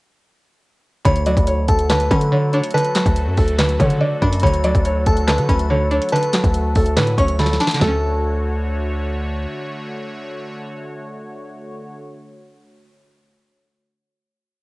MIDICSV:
0, 0, Header, 1, 7, 480
1, 0, Start_track
1, 0, Key_signature, 2, "major"
1, 0, Tempo, 422535
1, 1195, Time_signature, 4, 2, 24, 8
1, 16617, End_track
2, 0, Start_track
2, 0, Title_t, "Synth bell"
2, 0, Program_c, 0, 98
2, 1195, Note_on_c, 0, 83, 107
2, 1872, Note_off_c, 0, 83, 0
2, 1915, Note_on_c, 0, 81, 81
2, 2140, Note_off_c, 0, 81, 0
2, 2154, Note_on_c, 0, 81, 91
2, 2383, Note_off_c, 0, 81, 0
2, 2395, Note_on_c, 0, 83, 80
2, 3072, Note_off_c, 0, 83, 0
2, 3115, Note_on_c, 0, 81, 101
2, 4750, Note_off_c, 0, 81, 0
2, 4795, Note_on_c, 0, 83, 79
2, 5023, Note_off_c, 0, 83, 0
2, 5035, Note_on_c, 0, 83, 100
2, 5712, Note_off_c, 0, 83, 0
2, 5755, Note_on_c, 0, 81, 92
2, 5981, Note_off_c, 0, 81, 0
2, 5994, Note_on_c, 0, 81, 89
2, 6223, Note_off_c, 0, 81, 0
2, 6235, Note_on_c, 0, 83, 87
2, 6912, Note_off_c, 0, 83, 0
2, 6956, Note_on_c, 0, 81, 106
2, 8110, Note_off_c, 0, 81, 0
2, 8155, Note_on_c, 0, 85, 91
2, 8383, Note_off_c, 0, 85, 0
2, 8397, Note_on_c, 0, 83, 78
2, 8624, Note_off_c, 0, 83, 0
2, 8637, Note_on_c, 0, 81, 82
2, 8864, Note_off_c, 0, 81, 0
2, 8877, Note_on_c, 0, 81, 83
2, 10271, Note_off_c, 0, 81, 0
2, 16617, End_track
3, 0, Start_track
3, 0, Title_t, "Felt piano"
3, 0, Program_c, 1, 0
3, 1195, Note_on_c, 1, 73, 102
3, 1380, Note_off_c, 1, 73, 0
3, 1436, Note_on_c, 1, 74, 76
3, 1620, Note_off_c, 1, 74, 0
3, 1676, Note_on_c, 1, 73, 77
3, 1860, Note_off_c, 1, 73, 0
3, 1915, Note_on_c, 1, 69, 75
3, 2100, Note_off_c, 1, 69, 0
3, 2156, Note_on_c, 1, 71, 88
3, 2607, Note_off_c, 1, 71, 0
3, 2634, Note_on_c, 1, 73, 72
3, 2820, Note_off_c, 1, 73, 0
3, 2877, Note_on_c, 1, 73, 90
3, 3061, Note_off_c, 1, 73, 0
3, 3115, Note_on_c, 1, 71, 98
3, 3792, Note_off_c, 1, 71, 0
3, 3837, Note_on_c, 1, 69, 78
3, 4021, Note_off_c, 1, 69, 0
3, 4075, Note_on_c, 1, 71, 82
3, 4260, Note_off_c, 1, 71, 0
3, 4314, Note_on_c, 1, 73, 82
3, 4499, Note_off_c, 1, 73, 0
3, 4556, Note_on_c, 1, 74, 83
3, 5007, Note_off_c, 1, 74, 0
3, 5036, Note_on_c, 1, 73, 105
3, 5221, Note_off_c, 1, 73, 0
3, 5276, Note_on_c, 1, 74, 96
3, 5461, Note_off_c, 1, 74, 0
3, 5514, Note_on_c, 1, 73, 93
3, 5699, Note_off_c, 1, 73, 0
3, 5755, Note_on_c, 1, 69, 83
3, 5940, Note_off_c, 1, 69, 0
3, 5997, Note_on_c, 1, 71, 84
3, 6448, Note_off_c, 1, 71, 0
3, 6474, Note_on_c, 1, 73, 92
3, 6659, Note_off_c, 1, 73, 0
3, 6718, Note_on_c, 1, 73, 85
3, 6902, Note_off_c, 1, 73, 0
3, 6957, Note_on_c, 1, 71, 88
3, 7633, Note_off_c, 1, 71, 0
3, 7679, Note_on_c, 1, 69, 81
3, 7862, Note_off_c, 1, 69, 0
3, 7916, Note_on_c, 1, 71, 85
3, 8100, Note_off_c, 1, 71, 0
3, 8159, Note_on_c, 1, 73, 87
3, 8343, Note_off_c, 1, 73, 0
3, 8397, Note_on_c, 1, 69, 87
3, 8581, Note_off_c, 1, 69, 0
3, 8878, Note_on_c, 1, 69, 89
3, 10271, Note_off_c, 1, 69, 0
3, 16617, End_track
4, 0, Start_track
4, 0, Title_t, "Analog synth pad"
4, 0, Program_c, 2, 89
4, 1194, Note_on_c, 2, 66, 74
4, 1195, Note_on_c, 2, 54, 81
4, 1195, Note_on_c, 2, 57, 75
4, 1195, Note_on_c, 2, 69, 89
4, 8829, Note_off_c, 2, 54, 0
4, 8829, Note_off_c, 2, 66, 0
4, 8830, Note_off_c, 2, 57, 0
4, 8830, Note_off_c, 2, 69, 0
4, 8875, Note_on_c, 2, 50, 80
4, 8876, Note_on_c, 2, 57, 74
4, 8876, Note_on_c, 2, 66, 72
4, 8876, Note_on_c, 2, 73, 89
4, 13579, Note_off_c, 2, 50, 0
4, 13579, Note_off_c, 2, 57, 0
4, 13579, Note_off_c, 2, 66, 0
4, 13579, Note_off_c, 2, 73, 0
4, 16617, End_track
5, 0, Start_track
5, 0, Title_t, "Synth pluck"
5, 0, Program_c, 3, 84
5, 1189, Note_on_c, 3, 50, 97
5, 1436, Note_on_c, 3, 54, 83
5, 2145, Note_off_c, 3, 50, 0
5, 2159, Note_on_c, 3, 50, 92
5, 2396, Note_on_c, 3, 61, 89
5, 2621, Note_off_c, 3, 50, 0
5, 2635, Note_on_c, 3, 50, 90
5, 2636, Note_off_c, 3, 54, 0
5, 2881, Note_on_c, 3, 62, 97
5, 3100, Note_off_c, 3, 50, 0
5, 3114, Note_on_c, 3, 50, 102
5, 3357, Note_on_c, 3, 54, 89
5, 3596, Note_off_c, 3, 61, 0
5, 4065, Note_off_c, 3, 50, 0
5, 4078, Note_off_c, 3, 62, 0
5, 4078, Note_on_c, 3, 50, 93
5, 4322, Note_on_c, 3, 49, 90
5, 4540, Note_off_c, 3, 50, 0
5, 4553, Note_on_c, 3, 50, 91
5, 4556, Note_off_c, 3, 54, 0
5, 4796, Note_on_c, 3, 62, 93
5, 5021, Note_off_c, 3, 50, 0
5, 5035, Note_on_c, 3, 50, 97
5, 5036, Note_off_c, 3, 62, 0
5, 5039, Note_off_c, 3, 49, 0
5, 5272, Note_on_c, 3, 54, 82
5, 5979, Note_off_c, 3, 50, 0
5, 5993, Note_on_c, 3, 50, 93
5, 6234, Note_on_c, 3, 61, 84
5, 6463, Note_off_c, 3, 50, 0
5, 6474, Note_off_c, 3, 54, 0
5, 6476, Note_on_c, 3, 50, 91
5, 6713, Note_on_c, 3, 62, 85
5, 6946, Note_off_c, 3, 50, 0
5, 6960, Note_on_c, 3, 50, 96
5, 7197, Note_on_c, 3, 54, 81
5, 7435, Note_off_c, 3, 61, 0
5, 7900, Note_off_c, 3, 50, 0
5, 7913, Note_on_c, 3, 50, 95
5, 7914, Note_off_c, 3, 62, 0
5, 8159, Note_on_c, 3, 61, 81
5, 8383, Note_off_c, 3, 50, 0
5, 8396, Note_off_c, 3, 54, 0
5, 8397, Note_on_c, 3, 50, 87
5, 8642, Note_on_c, 3, 62, 92
5, 8794, Note_off_c, 3, 50, 0
5, 8807, Note_on_c, 3, 50, 84
5, 8853, Note_on_c, 3, 54, 79
5, 8877, Note_off_c, 3, 61, 0
5, 8879, Note_off_c, 3, 62, 0
5, 8898, Note_on_c, 3, 57, 79
5, 8943, Note_on_c, 3, 61, 94
5, 13745, Note_off_c, 3, 50, 0
5, 13790, Note_off_c, 3, 54, 0
5, 13835, Note_off_c, 3, 57, 0
5, 13881, Note_off_c, 3, 61, 0
5, 16617, End_track
6, 0, Start_track
6, 0, Title_t, "808-style bass"
6, 0, Program_c, 4, 38
6, 1195, Note_on_c, 4, 38, 115
6, 1541, Note_off_c, 4, 38, 0
6, 1554, Note_on_c, 4, 38, 106
6, 1900, Note_off_c, 4, 38, 0
6, 1916, Note_on_c, 4, 38, 102
6, 2376, Note_off_c, 4, 38, 0
6, 2395, Note_on_c, 4, 50, 106
6, 2971, Note_off_c, 4, 50, 0
6, 3474, Note_on_c, 4, 38, 112
6, 3715, Note_on_c, 4, 42, 100
6, 3732, Note_off_c, 4, 38, 0
6, 3829, Note_off_c, 4, 42, 0
6, 3836, Note_on_c, 4, 38, 108
6, 4297, Note_off_c, 4, 38, 0
6, 4315, Note_on_c, 4, 50, 108
6, 4546, Note_off_c, 4, 50, 0
6, 4794, Note_on_c, 4, 42, 103
6, 5025, Note_off_c, 4, 42, 0
6, 5035, Note_on_c, 4, 38, 118
6, 5381, Note_off_c, 4, 38, 0
6, 5394, Note_on_c, 4, 38, 106
6, 5740, Note_off_c, 4, 38, 0
6, 5756, Note_on_c, 4, 38, 106
6, 6117, Note_on_c, 4, 50, 98
6, 6134, Note_off_c, 4, 38, 0
6, 6230, Note_off_c, 4, 50, 0
6, 6236, Note_on_c, 4, 38, 108
6, 6812, Note_off_c, 4, 38, 0
6, 7314, Note_on_c, 4, 38, 103
6, 7661, Note_off_c, 4, 38, 0
6, 7677, Note_on_c, 4, 38, 111
6, 7915, Note_on_c, 4, 45, 96
6, 7932, Note_off_c, 4, 38, 0
6, 8143, Note_off_c, 4, 45, 0
6, 8156, Note_on_c, 4, 38, 102
6, 8616, Note_off_c, 4, 38, 0
6, 8876, Note_on_c, 4, 38, 112
6, 10750, Note_off_c, 4, 38, 0
6, 16617, End_track
7, 0, Start_track
7, 0, Title_t, "Drums"
7, 1195, Note_on_c, 9, 36, 114
7, 1195, Note_on_c, 9, 42, 83
7, 1309, Note_off_c, 9, 36, 0
7, 1309, Note_off_c, 9, 42, 0
7, 1314, Note_on_c, 9, 42, 62
7, 1427, Note_off_c, 9, 42, 0
7, 1432, Note_on_c, 9, 42, 89
7, 1545, Note_off_c, 9, 42, 0
7, 1554, Note_on_c, 9, 36, 101
7, 1560, Note_on_c, 9, 42, 65
7, 1668, Note_off_c, 9, 36, 0
7, 1671, Note_off_c, 9, 42, 0
7, 1671, Note_on_c, 9, 42, 79
7, 1784, Note_off_c, 9, 42, 0
7, 1912, Note_on_c, 9, 42, 85
7, 1916, Note_on_c, 9, 36, 101
7, 2026, Note_off_c, 9, 42, 0
7, 2030, Note_off_c, 9, 36, 0
7, 2031, Note_on_c, 9, 42, 61
7, 2145, Note_off_c, 9, 42, 0
7, 2156, Note_on_c, 9, 38, 123
7, 2159, Note_on_c, 9, 42, 92
7, 2163, Note_on_c, 9, 39, 100
7, 2269, Note_off_c, 9, 38, 0
7, 2272, Note_off_c, 9, 42, 0
7, 2272, Note_on_c, 9, 42, 62
7, 2277, Note_off_c, 9, 39, 0
7, 2386, Note_off_c, 9, 42, 0
7, 2395, Note_on_c, 9, 36, 89
7, 2399, Note_on_c, 9, 42, 73
7, 2509, Note_off_c, 9, 36, 0
7, 2513, Note_off_c, 9, 42, 0
7, 2513, Note_on_c, 9, 42, 66
7, 2627, Note_off_c, 9, 42, 0
7, 2875, Note_on_c, 9, 42, 49
7, 2989, Note_off_c, 9, 42, 0
7, 2995, Note_on_c, 9, 42, 82
7, 3075, Note_off_c, 9, 42, 0
7, 3075, Note_on_c, 9, 42, 67
7, 3155, Note_off_c, 9, 42, 0
7, 3155, Note_on_c, 9, 42, 80
7, 3233, Note_off_c, 9, 42, 0
7, 3233, Note_on_c, 9, 42, 60
7, 3347, Note_off_c, 9, 42, 0
7, 3351, Note_on_c, 9, 42, 90
7, 3354, Note_on_c, 9, 38, 101
7, 3362, Note_on_c, 9, 39, 80
7, 3464, Note_off_c, 9, 42, 0
7, 3468, Note_off_c, 9, 38, 0
7, 3474, Note_on_c, 9, 36, 99
7, 3475, Note_off_c, 9, 39, 0
7, 3480, Note_on_c, 9, 42, 62
7, 3588, Note_off_c, 9, 36, 0
7, 3590, Note_off_c, 9, 42, 0
7, 3590, Note_on_c, 9, 42, 78
7, 3704, Note_off_c, 9, 42, 0
7, 3832, Note_on_c, 9, 46, 87
7, 3836, Note_on_c, 9, 36, 102
7, 3946, Note_off_c, 9, 46, 0
7, 3950, Note_off_c, 9, 36, 0
7, 3951, Note_on_c, 9, 42, 63
7, 4064, Note_off_c, 9, 42, 0
7, 4075, Note_on_c, 9, 38, 124
7, 4078, Note_on_c, 9, 42, 92
7, 4082, Note_on_c, 9, 39, 98
7, 4189, Note_off_c, 9, 38, 0
7, 4192, Note_off_c, 9, 42, 0
7, 4192, Note_on_c, 9, 42, 65
7, 4196, Note_off_c, 9, 39, 0
7, 4305, Note_off_c, 9, 42, 0
7, 4315, Note_on_c, 9, 36, 85
7, 4319, Note_on_c, 9, 42, 77
7, 4429, Note_off_c, 9, 36, 0
7, 4432, Note_off_c, 9, 42, 0
7, 4433, Note_on_c, 9, 42, 66
7, 4547, Note_off_c, 9, 42, 0
7, 4794, Note_on_c, 9, 36, 87
7, 4795, Note_on_c, 9, 42, 48
7, 4908, Note_off_c, 9, 36, 0
7, 4909, Note_off_c, 9, 42, 0
7, 4915, Note_on_c, 9, 42, 84
7, 4995, Note_off_c, 9, 42, 0
7, 4995, Note_on_c, 9, 42, 66
7, 5036, Note_on_c, 9, 36, 116
7, 5076, Note_off_c, 9, 42, 0
7, 5076, Note_on_c, 9, 42, 80
7, 5149, Note_off_c, 9, 36, 0
7, 5154, Note_off_c, 9, 42, 0
7, 5154, Note_on_c, 9, 42, 63
7, 5267, Note_off_c, 9, 42, 0
7, 5271, Note_on_c, 9, 42, 87
7, 5385, Note_off_c, 9, 42, 0
7, 5394, Note_on_c, 9, 36, 100
7, 5400, Note_on_c, 9, 42, 61
7, 5508, Note_off_c, 9, 36, 0
7, 5510, Note_off_c, 9, 42, 0
7, 5510, Note_on_c, 9, 42, 79
7, 5624, Note_off_c, 9, 42, 0
7, 5752, Note_on_c, 9, 42, 87
7, 5756, Note_on_c, 9, 36, 105
7, 5866, Note_off_c, 9, 42, 0
7, 5870, Note_off_c, 9, 36, 0
7, 5871, Note_on_c, 9, 42, 60
7, 5984, Note_off_c, 9, 42, 0
7, 5995, Note_on_c, 9, 38, 123
7, 5999, Note_on_c, 9, 42, 92
7, 6003, Note_on_c, 9, 39, 100
7, 6109, Note_off_c, 9, 38, 0
7, 6112, Note_off_c, 9, 42, 0
7, 6112, Note_on_c, 9, 42, 63
7, 6116, Note_off_c, 9, 39, 0
7, 6226, Note_off_c, 9, 42, 0
7, 6236, Note_on_c, 9, 36, 86
7, 6240, Note_on_c, 9, 42, 78
7, 6350, Note_off_c, 9, 36, 0
7, 6353, Note_off_c, 9, 42, 0
7, 6353, Note_on_c, 9, 42, 62
7, 6467, Note_off_c, 9, 42, 0
7, 6716, Note_on_c, 9, 42, 48
7, 6829, Note_off_c, 9, 42, 0
7, 6835, Note_on_c, 9, 42, 83
7, 6915, Note_off_c, 9, 42, 0
7, 6915, Note_on_c, 9, 42, 67
7, 6996, Note_off_c, 9, 42, 0
7, 6996, Note_on_c, 9, 42, 81
7, 7074, Note_off_c, 9, 42, 0
7, 7074, Note_on_c, 9, 42, 58
7, 7188, Note_off_c, 9, 42, 0
7, 7192, Note_on_c, 9, 42, 90
7, 7195, Note_on_c, 9, 38, 105
7, 7203, Note_on_c, 9, 39, 81
7, 7305, Note_off_c, 9, 42, 0
7, 7309, Note_off_c, 9, 38, 0
7, 7315, Note_on_c, 9, 36, 96
7, 7316, Note_off_c, 9, 39, 0
7, 7320, Note_on_c, 9, 42, 62
7, 7428, Note_off_c, 9, 36, 0
7, 7430, Note_off_c, 9, 42, 0
7, 7430, Note_on_c, 9, 42, 77
7, 7544, Note_off_c, 9, 42, 0
7, 7672, Note_on_c, 9, 46, 88
7, 7677, Note_on_c, 9, 36, 105
7, 7786, Note_off_c, 9, 46, 0
7, 7790, Note_off_c, 9, 36, 0
7, 7791, Note_on_c, 9, 42, 61
7, 7905, Note_off_c, 9, 42, 0
7, 7916, Note_on_c, 9, 38, 127
7, 7919, Note_on_c, 9, 42, 92
7, 7923, Note_on_c, 9, 39, 98
7, 8030, Note_off_c, 9, 38, 0
7, 8033, Note_off_c, 9, 42, 0
7, 8033, Note_on_c, 9, 42, 63
7, 8037, Note_off_c, 9, 39, 0
7, 8146, Note_off_c, 9, 42, 0
7, 8156, Note_on_c, 9, 36, 89
7, 8160, Note_on_c, 9, 42, 76
7, 8270, Note_off_c, 9, 36, 0
7, 8273, Note_off_c, 9, 42, 0
7, 8274, Note_on_c, 9, 42, 64
7, 8388, Note_off_c, 9, 42, 0
7, 8396, Note_on_c, 9, 38, 65
7, 8476, Note_off_c, 9, 38, 0
7, 8476, Note_on_c, 9, 38, 63
7, 8556, Note_off_c, 9, 38, 0
7, 8556, Note_on_c, 9, 38, 81
7, 8637, Note_off_c, 9, 38, 0
7, 8637, Note_on_c, 9, 38, 83
7, 8637, Note_on_c, 9, 42, 78
7, 8716, Note_off_c, 9, 38, 0
7, 8716, Note_on_c, 9, 38, 104
7, 8750, Note_off_c, 9, 42, 0
7, 8759, Note_on_c, 9, 42, 81
7, 8796, Note_off_c, 9, 38, 0
7, 8796, Note_on_c, 9, 38, 98
7, 8873, Note_off_c, 9, 42, 0
7, 8876, Note_off_c, 9, 38, 0
7, 8876, Note_on_c, 9, 38, 107
7, 8876, Note_on_c, 9, 43, 104
7, 8990, Note_off_c, 9, 38, 0
7, 8990, Note_off_c, 9, 43, 0
7, 16617, End_track
0, 0, End_of_file